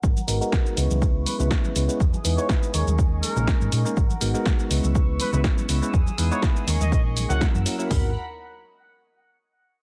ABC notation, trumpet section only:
X:1
M:4/4
L:1/16
Q:"Swing 16ths" 1/4=122
K:G#m
V:1 name="Trumpet section"
z8 z2 B B z4 | z3 c z2 c z3 A4 z2 | z8 z2 B B z4 | z3 c z3 d d z2 f z4 |
z16 |]